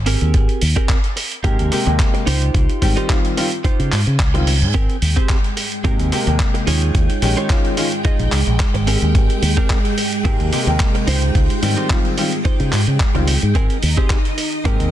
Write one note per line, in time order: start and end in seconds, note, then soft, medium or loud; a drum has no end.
0.00 0.15 G#1 medium
0.06 0.61 C4 medium
0.06 0.62 G4 medium
0.06 0.62 G#4 medium
0.06 0.62 A#4 loud
0.06 open hi-hat loud
0.21 0.31 D#2 loud
0.21 closed hi-hat soft
0.34 0.46 G#1 loud
0.34 kick loud
0.34 closed hi-hat medium
0.49 closed hi-hat soft
0.61 0.73 D#2 loud
0.61 open hi-hat loud
0.76 0.96 C4 medium
0.76 0.97 G4 medium
0.76 0.97 G#4 medium
0.76 0.97 A#4 loud
0.76 kick medium
0.76 closed hi-hat soft
0.89 kick loud
0.89 clap loud
0.89 closed hi-hat medium
1.04 closed hi-hat soft
1.16 muted clean electric guitar stroke soft
1.16 open hi-hat loud
1.32 closed hi-hat soft
1.44 1.56 G#2 loud
1.44 1.69 C3 medium
1.44 1.69 G#3 medium
1.44 1.69 A#3 medium
1.44 1.79 C4 medium
1.44 1.79 G4 medium
1.44 1.69 G4 medium
1.44 1.79 G#4 medium
1.44 1.79 A#4 loud
1.44 kick loud
1.44 closed hi-hat medium
1.59 1.69 D#2 loud
1.59 closed hi-hat soft
1.71 1.83 C3 medium
1.71 1.83 G#3 medium
1.71 1.83 A#3 medium
1.71 1.83 G4 medium
1.71 open hi-hat loud
1.86 1.97 D#2 loud
1.86 2.25 C3 medium
1.86 2.25 G#3 medium
1.86 2.26 A#3 medium
1.86 2.26 G5 medium
1.86 closed hi-hat soft
1.99 kick loud
1.99 clap loud
1.99 closed hi-hat medium
2.14 muted clean electric guitar stroke medium
2.14 closed hi-hat soft
2.26 2.49 C#2 medium
2.26 2.82 D#4 loud
2.26 2.82 F4 medium
2.26 2.82 G4 medium
2.26 2.82 C5 medium
2.26 open hi-hat loud
2.42 closed hi-hat soft
2.54 2.66 C#2 loud
2.54 kick loud
2.54 closed hi-hat medium
2.69 closed hi-hat soft
2.81 2.93 G#2 loud
2.81 3.06 D#3 medium
2.81 3.06 G3 medium
2.81 3.06 C4 medium
2.81 3.07 G4 loud
2.81 kick medium
2.81 open hi-hat loud
2.96 3.17 D#4 medium
2.96 3.17 F4 medium
2.96 3.17 G4 medium
2.96 3.17 C5 medium
2.96 closed hi-hat soft
3.09 3.34 D#3 medium
3.09 3.34 G3 medium
3.09 3.34 C4 medium
3.09 3.34 F4 medium
3.09 kick loud
3.09 clap loud
3.09 closed hi-hat medium
3.25 closed hi-hat soft
3.37 3.47 D#3 medium
3.37 3.47 G3 medium
3.37 3.47 C4 medium
3.37 3.47 F4 medium
3.37 muted clean electric guitar stroke soft
3.37 open hi-hat loud
3.52 closed hi-hat soft
3.64 3.99 D#4 medium
3.64 4.00 F4 medium
3.64 4.00 G4 medium
3.64 4.00 C5 loud
3.64 kick loud
3.64 closed hi-hat medium
3.64 reverse cymbal medium
3.79 3.89 C#3 loud
3.79 closed hi-hat soft
3.92 4.04 G#2 medium
3.92 clap medium
3.92 open hi-hat loud
4.07 4.17 C#3 medium
4.07 closed hi-hat soft
4.20 4.63 C#2 medium
4.20 kick loud
4.20 clap loud
4.20 closed hi-hat medium
4.34 4.48 D#3 medium
4.34 4.48 G3 medium
4.34 4.48 C4 medium
4.34 4.48 F4 medium
4.34 muted clean electric guitar stroke medium
4.34 closed hi-hat soft
4.47 muted clean electric guitar stroke soft
4.47 open hi-hat loud
4.62 4.72 G#2 medium
4.62 closed hi-hat soft
4.74 4.86 G#1 loud
4.74 13.56 G#3 medium
4.74 4.96 C4 loud
4.74 4.96 G4 medium
4.74 4.96 G#4 medium
4.74 4.96 A#4 loud
4.74 13.56 G5 medium
4.74 kick loud
4.74 closed hi-hat medium
4.90 closed hi-hat soft
5.02 5.14 D#2 loud
5.02 open hi-hat loud
5.16 5.37 C4 medium
5.16 5.37 G4 medium
5.16 5.37 G#4 medium
5.16 5.37 C5 medium
5.16 kick medium
5.16 closed hi-hat soft
5.29 kick loud
5.29 clap loud
5.29 closed hi-hat medium
5.44 closed hi-hat soft
5.57 muted clean electric guitar stroke soft
5.57 open hi-hat loud
5.72 closed hi-hat soft
5.84 5.96 G#2 loud
5.84 6.09 C3 medium
5.84 6.09 G#3 medium
5.84 6.09 A#3 medium
5.84 6.19 C4 medium
5.84 6.20 G4 medium
5.84 6.10 G4 medium
5.84 6.20 G#4 medium
5.84 6.20 A#4 loud
5.84 kick loud
5.84 closed hi-hat medium
5.99 6.09 D#2 loud
5.99 closed hi-hat soft
6.12 6.23 C3 medium
6.12 6.24 G#3 medium
6.12 6.24 A#3 medium
6.12 6.24 G4 medium
6.12 open hi-hat loud
6.27 6.37 D#2 medium
6.27 6.66 C3 medium
6.27 6.66 G#3 medium
6.27 6.66 A#3 medium
6.27 6.66 G5 medium
6.27 closed hi-hat soft
6.40 kick loud
6.40 clap loud
6.40 closed hi-hat medium
6.54 muted clean electric guitar stroke medium
6.54 closed hi-hat soft
6.67 6.89 D#2 loud
6.67 7.22 D#4 medium
6.67 7.22 F4 medium
6.67 7.22 G#4 medium
6.67 7.22 C#5 medium
6.67 open hi-hat loud
6.82 closed hi-hat soft
6.95 7.06 D#2 loud
6.95 kick loud
6.95 closed hi-hat medium
7.10 closed hi-hat soft
7.22 7.34 A#1 loud
7.22 7.47 D#3 medium
7.22 7.47 G#3 medium
7.22 7.47 C#4 medium
7.22 7.47 G4 loud
7.22 open hi-hat loud
7.37 7.57 D#4 medium
7.37 7.57 F4 medium
7.37 7.57 G#4 medium
7.37 7.58 C#5 loud
7.37 closed hi-hat soft
7.50 7.74 D#3 medium
7.50 7.74 G#3 medium
7.50 7.75 C#4 medium
7.50 7.75 F4 medium
7.50 kick loud
7.50 clap loud
7.50 closed hi-hat medium
7.65 closed hi-hat soft
7.77 7.87 D#3 medium
7.77 7.87 G#3 medium
7.77 7.87 C#4 medium
7.77 7.87 F4 loud
7.77 muted clean electric guitar stroke soft
7.77 open hi-hat loud
7.92 closed hi-hat soft
8.05 8.40 D#4 medium
8.05 8.40 F4 medium
8.05 8.40 G#4 medium
8.05 8.40 D#5 medium
8.05 kick loud
8.05 closed hi-hat medium
8.19 8.29 A#1 loud
8.19 closed hi-hat soft
8.32 8.44 C#2 medium
8.32 clap medium
8.32 open hi-hat loud
8.47 8.57 A#1 medium
8.47 closed hi-hat soft
8.60 kick loud
8.60 clap loud
8.60 closed hi-hat medium
8.74 8.96 G#1 medium
8.74 muted clean electric guitar stroke medium
8.74 closed hi-hat soft
8.87 9.42 C4 medium
8.87 9.42 G4 medium
8.87 9.43 G#4 medium
8.87 9.43 A#4 loud
8.87 open hi-hat loud
9.02 9.12 D#2 loud
9.02 closed hi-hat soft
9.15 9.26 G#1 loud
9.15 kick loud
9.15 closed hi-hat medium
9.30 closed hi-hat soft
9.42 9.54 D#2 loud
9.42 open hi-hat loud
9.57 9.77 C4 loud
9.57 9.77 G4 medium
9.57 9.78 G#4 medium
9.57 9.78 A#4 loud
9.57 kick medium
9.70 kick loud
9.70 clap loud
9.70 closed hi-hat medium
9.85 closed hi-hat soft
9.97 muted clean electric guitar stroke soft
9.97 open hi-hat loud
10.13 closed hi-hat soft
10.25 10.37 G#2 loud
10.25 10.49 C3 medium
10.25 10.50 G#3 medium
10.25 10.50 A#3 medium
10.25 10.60 C4 medium
10.25 10.60 G4 medium
10.25 10.50 G4 medium
10.25 10.60 G#4 medium
10.25 10.60 A#4 loud
10.25 kick loud
10.25 closed hi-hat medium
10.40 10.50 D#2 loud
10.40 closed hi-hat soft
10.52 10.64 C3 medium
10.52 10.64 G#3 medium
10.52 10.64 A#3 medium
10.52 10.64 G4 medium
10.52 open hi-hat loud
10.67 10.77 D#2 loud
10.67 11.06 C3 medium
10.67 11.06 G#3 medium
10.67 11.06 A#3 medium
10.67 11.07 G5 medium
10.67 closed hi-hat soft
10.80 kick loud
10.80 clap loud
10.80 closed hi-hat medium
10.95 muted clean electric guitar stroke medium
10.95 closed hi-hat soft
11.07 11.29 C#2 loud
11.07 11.62 D#4 loud
11.07 11.63 F4 medium
11.07 11.63 G4 medium
11.07 11.63 C5 loud
11.07 open hi-hat loud
11.22 closed hi-hat soft
11.35 11.47 C#2 loud
11.35 kick loud
11.35 closed hi-hat medium
11.50 closed hi-hat soft
11.62 11.74 G#2 loud
11.62 11.87 D#3 medium
11.62 11.87 G3 medium
11.62 11.87 C4 medium
11.62 11.87 G4 loud
11.62 open hi-hat loud
11.77 11.97 D#4 medium
11.77 11.98 F4 medium
11.77 11.98 G4 medium
11.77 11.98 C5 medium
11.90 12.15 G3 medium
11.90 12.15 C4 medium
11.90 12.15 F4 medium
11.90 kick loud
11.90 clap loud
11.90 closed hi-hat medium
12.05 closed hi-hat soft
12.18 12.27 D#3 medium
12.18 12.27 G3 medium
12.18 12.28 C4 medium
12.18 12.28 F4 medium
12.18 muted clean electric guitar stroke soft
12.18 open hi-hat loud
12.32 closed hi-hat soft
12.45 12.80 D#4 medium
12.45 12.80 F4 medium
12.45 12.80 G4 medium
12.45 12.80 C5 loud
12.45 kick loud
12.45 closed hi-hat medium
12.60 12.70 C#3 loud
12.60 closed hi-hat soft
12.72 12.84 G#2 medium
12.72 clap medium
12.72 open hi-hat loud
12.87 12.97 C#3 medium
12.87 closed hi-hat soft
13.00 kick loud
13.00 clap loud
13.00 closed hi-hat medium
13.15 13.36 C#2 medium
13.15 13.28 D#3 medium
13.15 13.28 G3 medium
13.15 13.29 C4 medium
13.15 13.29 F4 medium
13.15 muted clean electric guitar stroke medium
13.15 closed hi-hat soft
13.27 muted clean electric guitar stroke soft
13.27 open hi-hat loud
13.42 13.53 G#2 loud
13.42 closed hi-hat soft
13.55 13.67 G#1 loud
13.55 13.76 C4 loud
13.55 14.91 D#4 medium
13.55 13.77 G4 medium
13.55 13.77 G#4 loud
13.55 13.77 A#4 loud
13.55 14.91 D#5 medium
13.55 kick loud
13.55 closed hi-hat medium
13.70 closed hi-hat soft
13.83 13.94 D#2 medium
13.83 open hi-hat loud
13.97 14.18 C4 medium
13.97 14.18 G4 medium
13.97 14.18 G#4 medium
13.97 14.18 C5 medium
13.97 kick medium
13.97 closed hi-hat soft
14.10 kick loud
14.10 clap loud
14.10 closed hi-hat medium
14.25 closed hi-hat soft
14.37 muted clean electric guitar stroke soft
14.37 open hi-hat loud
14.52 closed hi-hat soft
14.65 14.77 G#2 loud
14.65 14.90 C3 medium
14.65 14.90 G#3 medium
14.65 14.90 A#3 medium
14.65 14.91 C4 medium
14.65 14.90 G4 medium
14.65 14.91 G4 medium
14.65 14.91 G#4 medium
14.65 14.91 A#4 medium
14.65 kick loud
14.65 closed hi-hat medium
14.80 14.90 D#2 loud
14.80 closed hi-hat soft